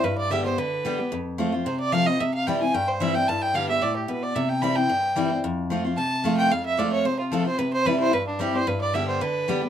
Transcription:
<<
  \new Staff \with { instrumentName = "Fiddle" } { \time 4/4 \key f \lydian \tempo 4 = 222 b'8 d''8 e''8 c''8 b'2 | r2 c''8 d''8 f''8 ees''8 | e''8 f''8 g''8 aes''8 g''8 c''8 e''8 g''8 | a''8 g''8 f''8 e''8 d''8 g'8 b'8 d''8 |
e''8 g''8 b''8 g''2~ g''16 r16 | r2 a''4. g''8 | f''8 e''8 d''8 des''8 c''8 f'8 a'8 c''8 | b'8 c''8 b'8 c''8 b'8 d'8 g'8 c''8 |
b'8 d''8 e''8 c''8 b'2 | }
  \new Staff \with { instrumentName = "Steel-string acoustic guitar" } { \time 4/4 \key f \lydian << { r4 <d g b g'>8 <b g'>8 r4 <d g b g'>8 <b g'>8 | r4 <f a c' f'>8 <c' f'>8 r4 <f a c' f'>8 <c' f'>8 | r4 <e g c' e'>8 <c' e'>8 r4 <e g c' e'>8 <c' e'>8 | r4 <d g b g'>8 <b g'>8 r2 |
r4 <e g c' e'>8 <c' e'>8 r4 <e g c' e'>8 <c' e'>8 | r4 <f a c' f'>8 <c' f'>8 r4 <f a c' f'>4 | r4 <f a c' f'>4 r4 <f a c' f'>8 f'8 | r4 <e g c' e'>4 r4 <e g c' e'>8 <c' e'>8 |
r4 <d g b g'>4 r4 <d g b g'>8 <b g'>8 | } \\ { g,2 d2 | f,2 c2 | c2 g,2 | g,2 a,4 b,4 |
c2 g,2 | f,2 c2 | f,2 c2 | c2 g,2 |
g,2 d2 | } >> }
>>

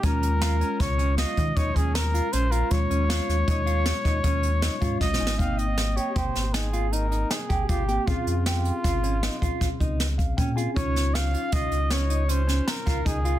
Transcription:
<<
  \new Staff \with { instrumentName = "Trumpet" } { \time 7/4 \key aes \major \tempo 4 = 157 bes'2 des''4 ees''4 des''8 aes'8 bes'4 c''8 bes'8 | des''1. ees''4 | f''8 ees''4 des''8 c''4 aes'4 bes'4 aes'4 g'4 | f'4 f'1 r2 |
des''4 f''4 ees''4 des''4 c''4 bes'4 aes'4 | }
  \new Staff \with { instrumentName = "Clean electric guitar" } { \time 7/4 \key aes \major des'4 f'8 des'4 des'8 f'4 ees'8 des'4 f'8 des'8 f'8~ | f'8 des'8 f'4 ees'8 f'4 ees'8 des'4 ees'8 f'4 ees'8 | ees'4 r8 g'8 g'4 ees'8 f'8 ees'8 ees'4 g'8 f'8 g'8 | f'4 g'4 f'8 des'8 ees'8 f'4 ees'4 r8 des'8 f'8 |
des'4 r8 f'8 f'4 des'8 ees'8 des'8 des'4 f'8 ees'8 f'8 | }
  \new Staff \with { instrumentName = "Tine electric piano" } { \time 7/4 \key aes \major << { r1. r4 | r1. ees''8 aes''8 | r1. r4 | r1 r4. f''8 g''8 aes''8 |
r1. r4 | } \\ { <aes des' f'>1.~ <aes des' f'>4 | <aes des' f'>1~ <aes des' f'>4. <aes des' f'>4. | <bes c' g''>1.~ <bes c' g''>8 <bes c' g'>8 | <c' des' aes'>1.~ <c' des' aes'>8 <c' des' aes'>8 |
<des' ees' f'>1.~ <des' ees' f'>4 | } >> }
  \new Staff \with { instrumentName = "Sub bass" } { \clef bass \time 7/4 \key aes \major ees,2 des,4. ees8 ees,8 ees,4. bes,,4 | ees,8 ees,4 ees,8 ees,4. ees,8 ees,4. aes,8 bes,,8 aes,,8 | aes,,2 aes,,8 aes,,2. aes,,8 aes,,4 | bes,,16 r16 f,4. aes,,4. bes,,16 r16 bes,,16 r16 des,4 bes,,8 bes,4 |
des,2 des,8 des,2. des,8 des,4 | }
  \new DrumStaff \with { instrumentName = "Drums" } \drummode { \time 7/4 <hh bd>8 hh8 <hh sn>8 hh8 <hh bd sn>8 hh8 <hh sn>8 <hh bd>8 <hh bd>8 <hh bd>8 <hh sn>8 hh8 hh8 hh8 | <hh bd>8 hh8 <hh sn>8 <hh sn>8 <hh bd>8 hh8 <hh sn>8 <hh bd sn>8 <hh bd>8 hh8 <hh sn>8 <hh bd>8 \tuplet 3/2 { <bd sn>8 sn8 sn8 } | <hh bd>8 hh8 <hh sn>8 hh8 <hh bd>8 <hh sn>8 <hh sn>8 hh8 hh8 hh8 <hh sn>8 <hh bd>8 <hh bd>8 hh8 | <hh bd>8 hh8 <hh sn>8 hh8 <hh bd sn>8 hh8 <hh sn>8 <hh bd>8 <hh bd sn>8 <hh bd>8 <hh sn>8 <hh bd>8 <hh bd>8 hh8 |
<hh bd>8 <hh sn>8 <hh sn>8 hh8 <hh bd>8 hh8 <hh sn>8 hh8 hh8 <hh sn>8 <hh sn>8 <hh bd sn>8 <hh bd>8 hh8 | }
>>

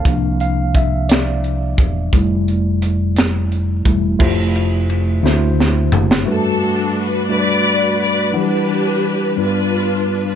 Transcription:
<<
  \new Staff \with { instrumentName = "String section" } { \time 6/8 \key f \major \tempo 4. = 58 << { r2. | r2. | r2. | \key g \major a'4 b'8 d''4 d''8 |
b'4. b'4 r8 | } \\ { r2. | r2. | r2. | <d' fis'>4. <fis' b'>4. |
<d' g'>4. <d' f'>4. | } >> }
  \new Staff \with { instrumentName = "Tine electric piano" } { \time 6/8 \key f \major f''8 f''8 e''8 d''4.~ | d''4 r2 | <a e' f' g' c''>4. <a d' e' fis' c''>4. | \key g \major <g a d' fis' b'>4. <g a d' fis' b'>4. |
<fis g d' e' b' fis''>4. <g b d' f' b'>4. | }
  \new Staff \with { instrumentName = "Tine electric piano" } { \clef bass \time 6/8 \key f \major <f bes d'>8 r2 r8 | <g a e'>4. r4 <g a e'>8 | r4. d4. | \key g \major g,4. r4. |
e4. g,4. | }
  \new Staff \with { instrumentName = "Fingered electric bass" } { \clef bass \time 6/8 \key f \major c,2~ c,8 e,,8 | f,,2~ f,,8 e,,8 | f,,4. d,4 fis,,8 | \key g \major r2. |
r2. | }
  \new DrumStaff \with { instrumentName = "Drums" } \drummode { \time 6/8 <hh bd>8 hh8 <hh bd>8 <hh sn>8 hh8 <hh bd>8 | <hh bd>8 hh8 hh8 <hh sn>8 hh8 <hh bd>8 | <cymc bd>8 cymr8 cymr8 sn8 sn8 tomfh16 sn16 | r4. r4. |
r4. r4. | }
>>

